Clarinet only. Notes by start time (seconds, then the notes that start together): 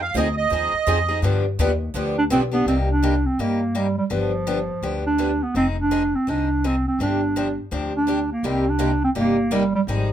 2.18 D4
2.31 C4
2.54 B3
2.68 C4
2.90 D4
3.26 C4
3.41 A#3
3.78 G3
3.98 G3
4.13 F3
5.07 D4
5.43 B3
5.57 C4
5.80 D4
6.15 C4
6.30 D4
6.66 C4
6.88 C4
7.02 D4
7.96 D4
8.32 A#3
8.47 C4
8.69 D4
9.04 C4
9.19 A#3
9.53 G3
9.75 G3
9.88 F3